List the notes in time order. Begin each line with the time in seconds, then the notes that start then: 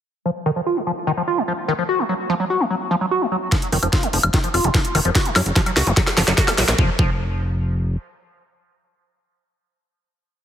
0.26 F3
0.46 D#3
0.56 F3
0.66 F4
0.76 F3
0.87 F3
1.07 D#3
1.17 F3
1.28 F4
1.38 F3
1.48 F3
1.68 D#3
1.79 F3
1.89 F#4
1.99 F#3
2.09 F#3
2.30 F3
2.40 F#3
2.50 F#4
2.60 F#3
2.70 F#3
2.91 F3
3.01 F#3
3.11 F#4
3.21 F#3
3.32 F#3
3.52 F3, kick, snare, closed hi-hat
3.62 closed hi-hat
3.72 F1 D#3, open hi-hat
3.83 F1 F3, closed hi-hat, high woodblock
3.93 F4, kick, snare, closed hi-hat
4.03 F3, closed hi-hat
4.13 F1 F3, open hi-hat
4.23 F1, closed hi-hat, high woodblock
4.34 D#3, kick, snare, closed hi-hat
4.44 F3, closed hi-hat
4.54 F1 F4, open hi-hat, high woodblock
4.64 F1 F3, closed hi-hat
4.74 F3, kick, snare, closed hi-hat
4.85 closed hi-hat
4.95 F1 D#3, open hi-hat, high woodblock
5.05 F1 F3, closed hi-hat
5.15 F#4, kick, snare, closed hi-hat
5.25 F#3, closed hi-hat
5.36 F#2 F#3, snare, open hi-hat, high woodblock
5.46 F#1, closed hi-hat
5.56 F3, kick, snare, closed hi-hat
5.66 F#3, closed hi-hat, high woodblock
5.77 C#2 F#4, snare, open hi-hat
5.87 F#1 F#3, closed hi-hat
5.97 F#3, kick, snare, closed hi-hat
6.07 snare, closed hi-hat, high woodblock
6.17 F#1 F3, snare, open hi-hat
6.28 F#1 F#3, snare, closed hi-hat
6.38 F#4, kick, snare, closed hi-hat
6.48 F#3, snare, closed hi-hat, high woodblock
6.58 A#1 F#3, snare, open hi-hat
6.68 A#1, snare, closed hi-hat
6.79 F1 F3, kick
6.99 F1 F3, kick